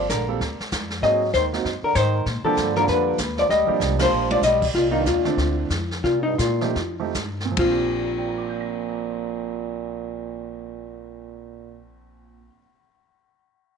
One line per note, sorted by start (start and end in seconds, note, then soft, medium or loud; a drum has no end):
0.09 0.39 A#1 medium
0.09 0.27 D3 medium
0.09 0.28 A#4 medium
0.09 kick soft
0.09 snare medium
0.09 hi-hat pedal medium
0.28 0.39 G3 medium
0.28 0.39 A#3 medium
0.28 0.39 C4 medium
0.28 0.39 F4 medium
0.28 0.39 A4 medium
0.40 0.58 D2 medium
0.40 brush sweep soft
0.40 kick soft
0.40 snare soft
0.60 muted upright bass stroke soft
0.60 snare soft
0.72 1.02 F2 medium
0.72 kick soft
0.72 snare medium
0.72 hi-hat pedal medium
0.90 snare soft
1.02 1.32 G#2 medium
1.02 1.31 F#3 medium
1.02 1.19 F#3 medium
1.02 1.19 A#3 medium
1.02 1.19 C4 medium
1.02 1.20 D#4 medium
1.02 1.20 G#4 medium
1.02 1.31 D#5 medium
1.02 brush sweep soft
1.02 kick soft
1.02 snare soft
1.33 1.63 D#2 medium
1.33 1.52 D#3 medium
1.33 1.45 C5 medium
1.33 kick soft
1.33 snare medium
1.33 hi-hat pedal soft
1.53 1.63 F#3 medium
1.53 1.63 A#3 medium
1.53 1.64 C4 medium
1.53 1.64 D#4 medium
1.53 1.64 F#4 medium
1.53 snare soft
1.64 1.82 F#2 medium
1.64 brush sweep soft
1.64 kick soft
1.64 snare soft
1.82 1.98 D3 medium
1.82 1.95 A#4 medium
1.82 muted upright bass stroke soft
1.95 2.25 G#2 medium
1.95 2.27 D#3 medium
1.95 2.44 C5 medium
1.95 kick soft
1.95 snare medium
1.95 hi-hat pedal medium
2.26 2.43 A#2 medium
2.26 brush sweep soft
2.26 kick soft
2.26 snare soft
2.43 2.74 D3 medium
2.43 2.74 F3 medium
2.43 2.74 G3 medium
2.43 2.74 A#3 medium
2.43 2.74 D4 medium
2.43 2.74 G4 medium
2.43 2.73 A4 medium
2.43 muted upright bass stroke soft
2.57 2.87 G2 medium
2.57 kick soft
2.57 snare medium
2.57 hi-hat pedal medium
2.76 2.89 D3 medium
2.76 3.17 F3 medium
2.76 3.17 G3 medium
2.76 3.17 A#3 medium
2.76 3.17 D4 medium
2.76 3.18 F4 medium
2.76 2.88 A#4 medium
2.76 snare soft
2.88 3.18 F2 medium
2.88 3.18 D3 medium
2.88 3.17 B4 medium
2.88 brush sweep soft
2.88 kick soft
2.88 snare soft
3.18 3.49 D#2 medium
3.18 kick soft
3.18 snare medium
3.18 hi-hat pedal medium
3.38 3.49 F3 medium
3.38 3.50 D5 medium
3.38 snare soft
3.49 3.67 D2 medium
3.49 3.96 G3 medium
3.49 3.96 D#5 medium
3.49 brush sweep soft
3.49 kick soft
3.49 snare soft
3.67 3.97 F3 medium
3.67 3.97 G3 medium
3.67 3.97 A#3 medium
3.67 3.98 D4 medium
3.67 3.98 G4 medium
3.67 muted upright bass stroke soft
3.80 4.10 C2 medium
3.80 kick soft
3.80 snare medium
3.80 hi-hat pedal soft
3.99 4.40 F3 medium
3.99 4.29 F3 medium
3.99 4.40 G3 medium
3.99 4.40 A#3 medium
3.99 4.40 D4 medium
3.99 4.40 F4 medium
3.99 4.30 C5 medium
3.99 snare medium
3.99 ride medium
4.11 4.41 A#1 medium
4.31 4.43 F3 medium
4.31 4.43 D5 medium
4.31 high tom medium
4.41 4.72 B1 medium
4.41 4.67 G3 medium
4.41 4.66 D#5 medium
4.41 snare medium
4.41 hi-hat pedal medium
4.62 kick medium
4.62 crash medium
4.74 5.04 C2 medium
4.74 4.93 A#2 medium
4.74 4.92 F4 medium
4.74 brush sweep soft
4.74 kick soft
4.74 snare soft
4.91 5.21 D#3 medium
4.91 5.21 A#3 medium
4.91 5.22 D4 medium
4.91 5.04 D#4 medium
4.91 5.22 F4 medium
4.97 5.06 G2 medium
5.06 5.36 D#2 medium
5.06 5.37 A#2 medium
5.06 5.54 F4 medium
5.06 kick soft
5.06 snare medium
5.06 hi-hat pedal medium
5.24 5.67 D3 medium
5.24 5.67 A3 medium
5.24 5.67 C4 medium
5.24 5.68 D4 medium
5.24 snare soft
5.37 5.68 D2 medium
5.37 brush sweep soft
5.37 kick soft
5.37 snare soft
5.70 6.02 F2 medium
5.70 kick soft
5.70 snare medium
5.70 hi-hat pedal medium
5.91 snare soft
6.03 6.23 A#2 medium
6.03 6.37 C3 medium
6.03 6.23 F4 medium
6.03 brush sweep soft
6.03 kick soft
6.03 snare soft
6.23 6.38 G2 medium
6.23 6.37 D#4 medium
6.38 6.74 A#2 medium
6.38 6.73 A#2 medium
6.38 6.95 F4 medium
6.38 kick soft
6.38 snare medium
6.38 hi-hat pedal medium
6.61 6.74 F3 medium
6.61 6.74 A3 medium
6.61 6.75 D#4 medium
6.61 6.75 G4 medium
6.61 snare soft
6.75 7.13 F2 medium
6.75 brush sweep soft
6.75 kick soft
6.75 snare soft
6.99 7.13 F3 medium
6.99 7.13 A3 medium
6.99 7.14 D#4 medium
6.99 7.14 G4 medium
7.14 7.56 G2 medium
7.14 kick soft
7.14 snare medium
7.14 hi-hat pedal medium
7.40 snare soft
7.45 12.40 A#2 medium
7.52 12.46 F3 medium
7.57 12.47 A#1 medium
7.57 11.87 A#2 medium
7.57 12.53 C4 medium
7.57 12.50 F4 medium
7.57 kick medium
7.57 floor tom medium
7.57 ride bell medium
7.64 12.59 D4 medium
7.71 12.66 G4 medium
8.03 12.58 A#4 soft
8.10 12.61 D5 soft
8.18 12.65 G5 soft
8.28 12.70 A#5 soft
8.38 12.75 D6 soft
8.49 12.81 G6 soft
8.61 12.87 A#6 soft